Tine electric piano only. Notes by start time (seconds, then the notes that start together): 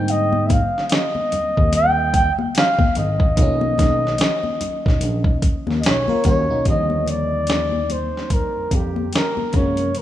Already playing: G#2
1.34 D#2
1.58 D#2
2.98 G#1
3.38 B1
3.80 B1
4.62 B1
4.87 B1
5.02 A#1
5.25 B1
5.68 D#2
5.85 B1
6.26 D#2
6.50 B1
6.67 D#2
8.56 F2
8.72 F2
9.54 F#2